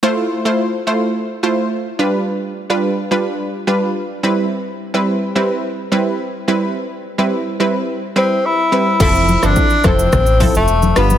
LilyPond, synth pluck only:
\new Staff \with { instrumentName = "Synth pluck" } { \time 4/4 \key f \lydian \tempo 4 = 107 <a e' f' c''>8. <a e' f' c''>16 r8 <a e' f' c''>8 r8 <a e' f' c''>8 r8 <g d' f' b'>8 | r8. <g d' f' b'>16 r8 <g d' f' b'>8 r8 <g d' f' b'>8 r8 <g c' e' b'>8 | r8. <g c' e' b'>16 r8 <g c' e' b'>8 r8 <g c' e' b'>8 r8 <g c' e' b'>8 | r8. <g c' e' b'>16 r8 <g c' e' b'>8 r8 <g c' e' b'>8 r8 <g c' e' b'>8 |
<f c' e' a'>8. <f c' e' a'>16 r8 <f c' e' a'>8 r8 <f c' e' a'>8 r8 <g d' f' b'>8 | }